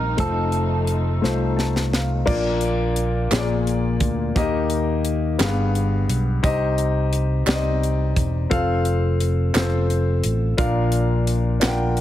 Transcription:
Already playing: A#1 D#3 G3 A#3 C4 D#4 G4 A#4 C5 D#5
0.17 F1 F3 A3 D#4 F4 A4 C5, kick, closed hi-hat
0.52 closed hi-hat
0.87 closed hi-hat
1.22 C2 A3 D#4 F4 C5, snare
1.57 A5, snare
1.76 snare
1.93 F5, snare
2.26 A#1 A#2 A#3 D4 F4 D5, kick, crash
2.61 closed hi-hat
2.96 closed hi-hat
3.31 A#1 A#2 A#3 F4 G#4 C#5, snare, clap, closed hi-hat
3.38 D5
3.67 closed hi-hat
4.00 D2, kick, closed hi-hat
4.35 D#2 D#3 A#3 D#4 G4 D#5, kick, closed hi-hat
4.70 closed hi-hat
5.05 closed hi-hat
5.38 G1 G2 A#3 G4 G#4 F5, snare, clap, closed hi-hat
5.45 B3
5.75 closed hi-hat
6.08 B1, closed hi-hat
6.43 C2 C3 C4 D#4 G4 D#5, kick, closed hi-hat
6.78 closed hi-hat
7.13 closed hi-hat
7.46 C2 C4 D#4 G4 D5, snare, clap, closed hi-hat
7.54 D#5
7.83 closed hi-hat
8.16 E1, kick, closed hi-hat
8.50 F1 C4 F4 A4 F5, kick, closed hi-hat
8.85 closed hi-hat
9.20 closed hi-hat
9.54 F1 C4 F4 A4 C5, snare, clap, closed hi-hat
9.90 closed hi-hat
10.24 A1, closed hi-hat
10.57 A#1 A#2 D4 F4 A#4 F5, kick, closed hi-hat
10.92 closed hi-hat
11.27 closed hi-hat
11.60 D4 F4 A#4 F#5, snare, clap, closed hi-hat
11.68 G5
11.97 closed hi-hat

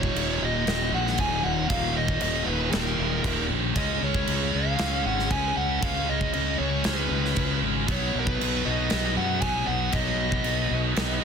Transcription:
Already playing: D#1 D#2 A#2 D#3 C#5
0.03 kick
0.15 D#1, crash
0.35 C#5
0.41 D#1 D#5
0.66 D#1 D#2 A#2 D#3, snare, crash
0.91 A#1 D#2 A#2 D#3 F#5
1.07 snare
1.18 D#1 D#2 A#2 D#3 G#5, kick, crash
1.44 D#1 F#5
1.68 D#1 D#2 A#2 D#3 F5, kick, crash
1.98 D#5
2.08 kick
2.21 D#1 D#5, crash
2.46 D#1 B4
2.71 D#1 D#2 A#2 D#3 A#4, snare, crash
2.98 D#1 D#2 A#2 D#3
3.24 D#1 D#2 A#2 D#3, kick, crash
3.50 A#1
3.75 C#2 C#3 G#3 C#4 D#5, kick, crash
4.02 C#2 C#5
4.14 kick
4.27 C#2, crash
4.54 C#2 F5
4.76 C#2 C#3 G#3, snare, crash
4.80 C#4
5.03 G#1 C#3 G#3 C#4 F#5
5.19 snare
5.29 C#2 C#3 G#3 C#4 G#5, kick, crash
5.57 C#2 F#5
5.81 C#2 C#3 G#3 C#4 F5, kick, crash
6.09 D#5
6.21 kick
6.33 C#2 D#5, crash
6.59 C#2 C#5
6.83 C#2 C#3 G#3 C#4 B4, snare, crash
7.10 C#2 C#3 G#3 C#4
7.25 snare
7.35 C#2 C#3 G#3 C#4, kick, crash
7.62 G#1
7.86 B1 B2 F#3 B3, kick, crash
7.92 C#5
8.15 B1 B4
8.27 kick
8.41 B1, crash
8.65 B1 D#5
8.89 B1 B2 F#3 B3, snare, crash
9.15 F#2 B2 F#3 B3 F#5
9.41 B1 B2 F#3 B3 G#5, kick, crash
9.67 B1 F#5
9.92 B1 B2 F#3 B3 D#5, kick, crash
10.32 kick
10.44 B1, crash
10.71 B1
10.95 B1 B2 F#3 B3, snare, crash
11.20 B3

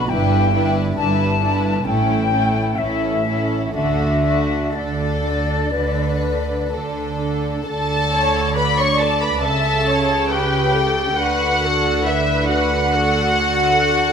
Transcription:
Already playing: F#4 B5
0.09 G1 G2 D4 E4 B4 G5
0.53 D4 E4 B4
0.96 G1 G2 D4 E4 B4 A5
1.41 D4 E4 B4
1.86 A1 A2 C#4 E4 A4 G5
2.32 C#4 E4 A4
2.78 A1 A2 C#4 E4 A4 E5
3.25 C#4 E4 A4
3.74 D2 D3 D4 F#4 A4 E5
4.25 D4 F#4 A4
4.74 D2 D3 D4 A4 D5
5.26 D4 A4
5.74 D2 D3 D4 A4 B4
6.24 D4 A4
6.72 D2 D3 D4 A4
7.20 D4 A4
7.66 D2 D3 A4 A5
8.12 C#5
8.56 B4 D5 B5
8.78 C#5 C#6
9.00 A4 A5
9.22 B4 B5
9.42 C#2 C#3 A4 E5 A5
9.87 C#5
10.30 G4 B4 G5
10.74 A4
11.17 D2 D3 F#4 B4 F#5
11.62 A4
12.05 E4 B4 E5
12.48 F#4 F#5
12.93 A4
13.36 A4

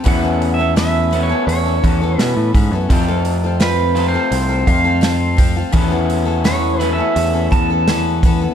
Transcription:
0.04 E2 B2 E3 A3 B3 C#4 A4, kick, open hi-hat
0.08 E4 F#5
0.22 B3 C#4 A4
0.42 open hi-hat
0.54 E5
0.59 B3 C#4 A4
0.76 E3 B3 C#4 A4 E5, snare, open hi-hat
1.11 E3 A3 B3 C#4 E4 A4, open hi-hat
1.15 E2 B2
1.23 C#5
1.29 B3 C#4 A4
1.47 E2 C#5, open hi-hat
1.65 B3 C#4 A4
1.84 E2 E3 B3 C#4 A4, kick, open hi-hat
2.02 B3 C#4 A4
2.19 B2 E3 B3 C#4 A4 B4, snare, open hi-hat
2.37 A2
2.54 G#2 E3 B3 C#4 A4, kick, open hi-hat
2.71 F#2 B3 C#4 A4
2.89 F2 C3 F3 A3 C4 F4 A4, kick, open hi-hat
3.08 C4 F4 A4
3.25 open hi-hat
3.44 C4 F4 A4
3.60 F3 C4 F4 A4 B4, snare, open hi-hat
3.95 F2 C3 F3 A3 C4 F4 A4, open hi-hat
4.08 C5
4.14 C4 F4 A4
4.31 C2, open hi-hat
4.49 C4 F4 A4
4.67 F2 F3 C4 F4 A4 F5, kick, open hi-hat
4.84 C4 F4 A4
5.01 F3 C4 F4 A4, snare, open hi-hat
5.37 F3 C4 F4 A4, kick, open hi-hat
5.56 C4 F4 A4
5.72 E2 B2 E3 A3 B3 C#4 E4 A4, kick, open hi-hat
5.88 B3 C#4 A4
6.10 open hi-hat
6.25 B3 C#4 A4
6.44 E3 B3 C#4 A4 C#5, snare, open hi-hat
6.79 E2 B2 E3 A3 B3 C#4 E4 A4, open hi-hat
6.93 E5
6.98 B3 C#4 A4
7.16 E2, open hi-hat
7.33 B3 C#4 A4
7.51 E2 E3 B3 C#4 A4 A5, kick, open hi-hat
7.70 B3 C#4 A4
7.88 E3 B3 C#4 A4, snare, open hi-hat
8.23 E3 B3 C#4 A4, kick, open hi-hat
8.41 B3 C#4 A4

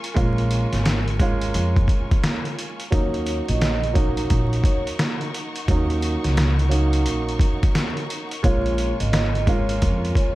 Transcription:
Already playing: F4 A#4 G#5 C#6
0.04 closed hi-hat
0.14 A#1 G#3 A#3 C#4 F4, kick, closed hi-hat
0.38 closed hi-hat
0.51 closed hi-hat
0.73 G#1, snare, closed hi-hat
0.85 snare, closed hi-hat
1.08 closed hi-hat
1.19 G#3 A#3 C#4 F4, kick, closed hi-hat
1.42 closed hi-hat
1.54 F2, closed hi-hat
1.76 kick, closed hi-hat
1.88 kick, closed hi-hat
2.11 kick, closed hi-hat
2.23 snare, closed hi-hat
2.45 closed hi-hat
2.59 closed hi-hat
2.80 closed hi-hat
2.91 D#2 F#3 A#3 C#4 D#4 A#4 C#5 F#5 C#6, kick, closed hi-hat
3.14 closed hi-hat
3.27 closed hi-hat
3.48 A#1 D#5, closed hi-hat
3.61 D#5, snare, closed hi-hat
3.83 closed hi-hat
3.93 F#3 A#3 C#4 D#4 C#5, kick, closed hi-hat
4.17 closed hi-hat
4.30 A#1, kick, closed hi-hat
4.53 closed hi-hat
4.64 C#5, kick, closed hi-hat
4.87 closed hi-hat
4.99 snare, closed hi-hat
5.21 closed hi-hat
5.34 closed hi-hat
5.56 closed hi-hat
5.68 D#2 F#3 A#3 C#4 D#4, kick, closed hi-hat
5.90 closed hi-hat
6.02 closed hi-hat
6.24 C#2, snare, closed hi-hat
6.37 snare, closed hi-hat
6.59 closed hi-hat
6.69 F#3 A#3 C#4 D#4, closed hi-hat
6.93 closed hi-hat
7.06 A#1, closed hi-hat
7.29 closed hi-hat
7.39 kick, closed hi-hat
7.63 kick, closed hi-hat
7.75 snare, closed hi-hat
7.97 closed hi-hat
8.10 closed hi-hat
8.31 closed hi-hat
8.43 A#1 G#3 A#3 C#4 F4 C#5 G#5, kick, closed hi-hat
8.66 closed hi-hat
8.78 closed hi-hat
8.99 G#1 D#5, closed hi-hat
9.11 D#5, snare, closed hi-hat
9.35 closed hi-hat
9.46 G#3 A#3 C#4 F4, kick, closed hi-hat
9.69 closed hi-hat
9.82 F2, kick, closed hi-hat
10.05 closed hi-hat
10.15 C#5, kick, closed hi-hat

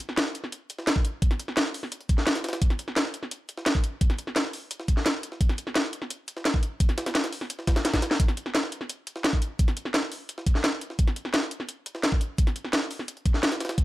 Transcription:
0.00 closed hi-hat
0.09 snare
0.17 snare, closed hi-hat
0.26 snare
0.35 closed hi-hat
0.44 snare
0.52 closed hi-hat
0.70 closed hi-hat
0.79 snare
0.87 snare, closed hi-hat
0.96 kick
1.05 closed hi-hat
1.22 kick, closed hi-hat
1.31 snare, closed hi-hat
1.39 closed hi-hat
1.48 snare
1.57 snare, closed hi-hat
1.66 snare
1.74 closed hi-hat, open hi-hat
1.83 snare
1.92 closed hi-hat
2.01 closed hi-hat
2.09 kick, closed hi-hat
2.18 snare
2.27 snare, closed hi-hat
2.35 snare, closed hi-hat
2.44 snare, closed hi-hat
2.49 snare, closed hi-hat
2.53 snare, closed hi-hat
2.62 kick, closed hi-hat
2.70 snare, closed hi-hat
2.79 closed hi-hat
2.88 snare
2.96 snare, closed hi-hat
3.05 snare
3.14 closed hi-hat
3.23 snare
3.31 closed hi-hat
3.49 closed hi-hat
3.58 snare
3.66 snare, closed hi-hat
3.75 kick
3.84 closed hi-hat
4.01 kick, closed hi-hat
4.10 snare, closed hi-hat
4.18 closed hi-hat
4.27 snare
4.36 snare, closed hi-hat
4.45 snare
4.53 closed hi-hat, open hi-hat
4.71 closed hi-hat
4.80 snare
4.88 kick, closed hi-hat
4.97 snare
5.06 snare, closed hi-hat
5.23 closed hi-hat
5.32 snare
5.41 kick, closed hi-hat
5.49 snare, closed hi-hat
5.58 closed hi-hat
5.67 snare
5.75 snare, closed hi-hat
5.84 snare
5.93 closed hi-hat
6.02 snare
6.10 closed hi-hat
6.28 closed hi-hat
6.37 snare
6.45 snare, closed hi-hat
6.54 kick
6.63 closed hi-hat
6.80 kick, closed hi-hat
6.89 snare, closed hi-hat
6.98 snare, closed hi-hat
7.06 snare, closed hi-hat
7.15 snare, closed hi-hat
7.24 snare, closed hi-hat
7.32 closed hi-hat, open hi-hat
7.41 snare
7.50 closed hi-hat
7.59 snare
7.67 kick, snare, closed hi-hat
7.76 snare, closed hi-hat
7.85 snare, closed hi-hat
7.94 kick, snare, closed hi-hat
8.02 snare, closed hi-hat
8.11 snare
8.20 kick, closed hi-hat
8.28 snare, closed hi-hat
8.37 closed hi-hat
8.46 snare
8.55 snare, closed hi-hat
8.63 snare
8.72 closed hi-hat
8.81 snare
8.89 closed hi-hat
9.07 closed hi-hat
9.16 snare
9.24 snare, closed hi-hat
9.33 kick
9.42 closed hi-hat
9.59 kick, closed hi-hat
9.68 snare, closed hi-hat
9.77 closed hi-hat
9.85 snare
9.94 snare, closed hi-hat
10.03 snare
10.12 closed hi-hat, open hi-hat
10.29 closed hi-hat
10.38 snare
10.46 kick, closed hi-hat
10.55 snare
10.64 snare, closed hi-hat
10.81 closed hi-hat
10.90 snare
10.99 kick, closed hi-hat
11.08 snare, closed hi-hat
11.16 closed hi-hat
11.25 snare
11.34 snare, closed hi-hat
11.42 snare
11.51 closed hi-hat
11.60 snare
11.69 closed hi-hat
11.86 closed hi-hat
11.95 snare
12.03 snare, closed hi-hat
12.12 kick
12.21 closed hi-hat
12.38 kick, closed hi-hat
12.47 snare, closed hi-hat
12.56 closed hi-hat
12.65 snare
12.73 snare, closed hi-hat
12.82 snare
12.91 closed hi-hat, open hi-hat
12.99 snare
13.08 closed hi-hat
13.17 closed hi-hat
13.26 kick, closed hi-hat
13.34 snare
13.43 snare, closed hi-hat
13.52 snare, closed hi-hat
13.60 snare, closed hi-hat
13.65 snare, closed hi-hat
13.69 snare, closed hi-hat
13.78 kick, closed hi-hat

